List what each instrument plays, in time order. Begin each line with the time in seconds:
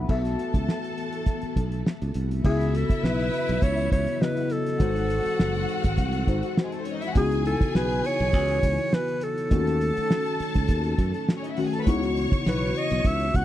Already playing: tine electric piano E5 F#5 B5
0.08 fingered electric bass B1, string machine E3 A3 B3 F#4, tine electric piano B3 F#4 A4 E5, string section A4 A5, kick, crash
0.25 snare, closed hi-hat
0.39 closed hi-hat
0.54 fingered electric bass C#2, kick, closed hi-hat
0.69 snare
0.84 closed hi-hat
0.98 closed hi-hat
1.13 closed hi-hat
1.26 kick, closed hi-hat
1.42 muted fingered electric bass stroke, closed hi-hat
1.56 fingered electric bass B1, kick, closed hi-hat
1.72 closed hi-hat
1.86 snare
2.02 fingered electric bass C#2, closed hi-hat
2.14 fingered electric bass C2, closed hi-hat
2.31 closed hi-hat
2.43 fingered electric bass C#2, tine electric piano C#3 B3 E4 F#4 E5, string machine E3 F#3 B3 E4, string section E4 E5, alto saxophone G#4, kick, crash
2.61 snare, closed hi-hat
2.75 alto saxophone A4, closed hi-hat
2.90 muted fingered electric bass stroke, kick, closed hi-hat
3.03 fingered electric bass B1, alto saxophone B4, snare
3.20 closed hi-hat
3.34 closed hi-hat
3.48 fingered electric bass B1, closed hi-hat
3.62 fingered electric bass C#2, alto saxophone C#5, kick, closed hi-hat
3.77 closed hi-hat
3.92 fingered electric bass C#2, alto saxophone C#5, kick, closed hi-hat
4.07 closed hi-hat
4.20 tine electric piano C#3 B3 E4 F#4 D#5, alto saxophone B4, snare
4.37 closed hi-hat
4.50 alto saxophone A4, closed hi-hat
4.67 snare, closed hi-hat
4.79 fingered electric bass G#1, tine electric piano G#3 D#4 F#4 C5, string machine G#3 C4 F#4, string section F#4 F#5, kick, closed hi-hat
4.96 snare, closed hi-hat
5.10 closed hi-hat
5.26 muted fingered electric bass stroke, closed hi-hat
5.39 fingered electric bass F#1, snare
5.55 closed hi-hat
5.69 closed hi-hat
5.84 fingered electric bass G#1, kick, closed hi-hat
5.97 fingered electric bass C2, kick, closed hi-hat
6.13 closed hi-hat
6.27 fingered electric bass G#1, tine electric piano G#3 D#4 F#4 C5, kick, closed hi-hat
6.43 closed hi-hat
6.57 snare
6.64 string section G#3 G#4
6.72 string section A3 A4, closed hi-hat
6.80 string section C4 C5
6.85 string section C#4 C#5, closed hi-hat
6.94 string section D#4 D#5
7.02 string section E4 E5, snare, closed hi-hat
7.08 string section F#4 F#5
7.15 fingered electric bass C#2, tine electric piano C#3 B3 D#4 E4 F#4, string machine E3 B3 D#5, string section G#4 G#5, alto saxophone G#4, kick, closed hi-hat
7.32 closed hi-hat
7.46 alto saxophone A4, closed hi-hat
7.61 muted fingered electric bass stroke, kick, closed hi-hat
7.75 fingered electric bass B1, alto saxophone B4, snare
7.91 closed hi-hat
8.05 alto saxophone C#5, closed hi-hat
8.19 fingered electric bass B1, closed hi-hat
8.33 fingered electric bass C#2, kick, closed hi-hat
8.48 closed hi-hat
8.63 fingered electric bass C#2, kick, closed hi-hat
8.78 closed hi-hat
8.93 alto saxophone B4, snare
9.08 closed hi-hat
9.21 alto saxophone A4, closed hi-hat
9.38 closed hi-hat
9.50 fingered electric bass D#2, tine electric piano D#3 A3 C#4 F#4, string machine D#3 A3 C#4, string section A4 A5, kick, closed hi-hat
9.67 snare, closed hi-hat
9.81 closed hi-hat
9.97 muted fingered electric bass stroke, closed hi-hat
10.11 snare
10.26 closed hi-hat
10.40 muted fingered electric bass stroke, closed hi-hat
10.54 fingered electric bass C#2, kick, closed hi-hat
10.68 fingered electric bass D#2, kick, closed hi-hat
10.83 closed hi-hat
10.98 fingered electric bass F#2, kick, closed hi-hat
11.14 closed hi-hat
11.28 snare
11.36 string section C#4 C#5
11.44 string section D#4 D#5, closed hi-hat
11.50 string section E4 E5
11.57 tine electric piano D#3 A3 C#4 F#4, string section F#4 F#5, open hi-hat
11.66 string section G#4 G#5
11.73 string section A4 A5, closed hi-hat
11.80 string section B4 B5
11.86 fingered electric bass C#2, tine electric piano C#3 B3 D#4 E4 F#4, string machine E3 B3 D#5, string section C#5 C#6, kick, closed hi-hat
12.03 snare, closed hi-hat
12.17 closed hi-hat
12.32 muted fingered electric bass stroke, kick, closed hi-hat
12.46 fingered electric bass B1, alto saxophone B4, snare
12.62 closed hi-hat
12.76 alto saxophone D#5, closed hi-hat
12.90 fingered electric bass B1, closed hi-hat
13.04 fingered electric bass C#2, alto saxophone E5, kick, closed hi-hat
13.20 closed hi-hat
13.34 fingered electric bass C#2, alto saxophone F#5, kick, closed hi-hat